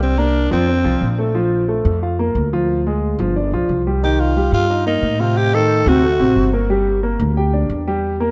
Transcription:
Already playing: C2 G3 G4
0.03 C4
0.18 A#3 D4 A#4
0.51 F2 F3 C4 F4
0.67 C4 C5
0.84 C2 F3 F4
1.01 A#1
1.18 A3 A4
1.35 F3 F4
1.68 A3 A4
1.85 F2
2.02 F4 F5
2.19 A#3 A#4
2.35 D2
2.53 F3 F4
2.87 G#3 G#4
3.19 G1 F3 F4
3.36 D4 D5
3.52 B1 F3 F4
3.69 C2
3.87 G3 G4
4.03 D#3 D#4 G4
4.20 F4
4.36 G3 G4
4.52 G2 F4
4.70 D#4 D#5
4.86 A#3 D#4 A#4
5.02 A2
5.20 C3 C4 F4
5.37 G4
5.53 D#3 D#4 A4
5.86 D2 C3 C4 F#4
6.03 A3 A4
6.19 A1 C3 C4
6.36 G1
6.53 A#3 A#4
6.70 G3 G4
7.03 A#3 A#4
7.19 D2
7.37 G4 G5
7.53 D4 D5
7.70 E2
7.87 G3 G4
8.20 A#3 A#4

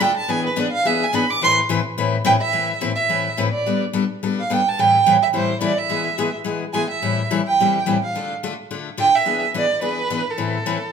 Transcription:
0.00 D3 A3 D4 F4 A4 G5
0.17 A5
0.28 E3 B3 D4 G#4 G#5
0.46 B4
0.56 E3 B3 D4 G#4 D5
0.72 F5
0.85 E3 B3 D4 G#4 E5
1.03 G#5
1.13 E3 B3 D4 G#4 B5
1.30 D6
1.41 A2 E3 A3 C4 E4 B4 C6
1.69 A2 E3 A3 C4 E4 B4
1.98 A2 E3 A3 C4 E4 B4
2.25 A2 E3 A3 C4 E4 B4 G5
2.42 E5
2.52 A2 E3 A3 C4 E4 B4
2.81 A2 E3 A3 C4 E4 B4
2.96 E5
3.09 A2 E3 A3 C4 E4 B4
3.37 A2 E3 A3 C4 E4 B4
3.52 D5
3.66 G3 B3 D4 A4
3.93 G3 B3 D4 A4
4.23 G3 B3 D4 A4
4.40 F5
4.50 G3 B3 D4 A4 G5
4.68 A5
4.79 A2 E3 G3 C4 E4 A4 G5
5.06 A2 E3 G3 C4 E4 A4
5.22 E5
5.33 A2 E3 G3 C4 E4 A4 C5
5.61 A2 E3 G3 C4 E4 A4 D5
5.78 E5
5.89 E3 G#3 B3 E4 G#4
6.18 E3 G#3 B3 E4 G#4
6.44 E3 G#3 B3 E4 G#4
6.73 E3 G#3 B3 E4 G#4 G#5
6.91 E5
7.02 A2 E3 G3 C4 E4 A4
7.31 A2 E3 G3 C4 E4 A4
7.46 G5
7.60 A2 E3 G3 C4 E4 A4
7.86 A2 E3 G3 C4 E4 A4
8.02 F5
8.15 D3 A3 D4 F4 A4
8.43 D3 A3 D4 F4 A4
8.71 D3 A3 D4 F4 A4
8.97 D3 A3 D4 F4 A4 G5
9.15 E5
9.25 E3 B3 D4 G#4
9.54 E3 B3 D4 G#4 D5
9.81 E3 B3 D4 G#4 B4
10.10 E3 B3 D4 G#4
10.30 A4
10.38 A2 E3 A3 C4 E4 B4
10.66 A2 E3 A3 C4 E4 B4

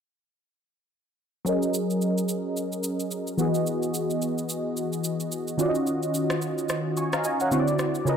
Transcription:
1.45 F#3 C#4 G#4 A#4, shaker
1.49 D#5
1.63 shaker
1.74 shaker
1.90 shaker
2.02 shaker
2.18 shaker
2.29 shaker
2.57 shaker
2.72 shaker
2.84 shaker
3.00 shaker
3.11 shaker
3.27 shaker
3.37 E3 B3 F#4 G#4, shaker
3.42 D#5
3.54 shaker
3.67 shaker
3.83 shaker
3.94 shaker
4.10 shaker
4.22 shaker
4.38 shaker
4.49 shaker
4.77 shaker
4.93 shaker
5.04 shaker
5.20 shaker
5.32 shaker
5.48 shaker
5.57 D#3 C#4 F4 F#4, shaker
5.62 D5
5.68 D#5
5.75 shaker
5.87 shaker
6.03 shaker
6.14 shaker
6.30 cross-stick, shaker
6.42 shaker
6.58 shaker
6.69 cross-stick, shaker
6.97 G#5 C#6, shaker
7.13 F5 A#5, cross-stick, shaker
7.24 D#5 G#5, shaker
7.40 C#5 F#5, shaker
7.51 D3 C4 E4 F#4 C#5, shaker
7.60 D5
7.68 shaker
7.79 cross-stick, shaker
7.95 shaker
8.05 C#3 C#4 F4 A#4 B4, shaker
8.09 D#5

